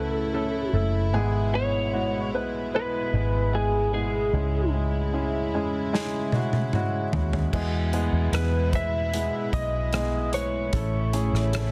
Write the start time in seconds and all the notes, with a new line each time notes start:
Already playing: C#2 C#3 A3 C#4 E4 F#4 A4 B4
0.33 A3 C#4 E4 A4
0.73 F#1 A3 C#4 E4 A4
1.13 G#1 G#2 B2 G#3 B3 E4 G#4
1.53 G#3 B3 E4 G#4 C#5
1.92 G#3 B3 E4 F#4
2.33 B1 G#3 B3 E4 B4
2.74 G#3 B3 E4 B4
3.13 G#1 G#3 B3 E4 G#4
3.52 G#3 B3 E4 G#4
3.93 G#3 B3 E4 G#4
4.33 C#2 G#2 C#3 G#3 C#4 E4 G#4
4.72 G#3 C#4 E4 G#4
5.13 G#3 C#4 E4 G#4
5.53 E2 G#3 C#4 E4 G#4
5.93 G#3 C#4 E4 G#4, snare
6.32 G#3 C#4 E4 F#4, high tom
6.53 high tom
6.73 G#3 C#4 E4 F#4, mid tom
7.12 D#2 G#3 C#4 E4 F#4, floor tom
7.33 floor tom
7.53 E2 B2 G#3 B3 E4 G#4, kick, crash
7.93 G#3 B3 E4 G#4, closed hi-hat
8.12 E2
8.32 E2 G#3 B3 B4, cross-stick, closed hi-hat
8.73 G#3 B3 E4 B4 E5, kick, closed hi-hat
9.13 G#3 B3 E4 G#4, closed hi-hat
9.53 B1 G#3 B3 E4 G#4 D#5, kick, closed hi-hat
9.93 G#3 B3 E4 G#4, cross-stick, closed hi-hat
10.33 G#3 B3 E4 B4 C#5, closed hi-hat
10.73 A1 A2 C#3 E3 A3 C#4 E4 A4, kick, closed hi-hat
11.13 A3 C#4 E4 G#4, closed hi-hat
11.33 A1, cross-stick
11.53 A3 C#4 E4 A4, cross-stick, closed hi-hat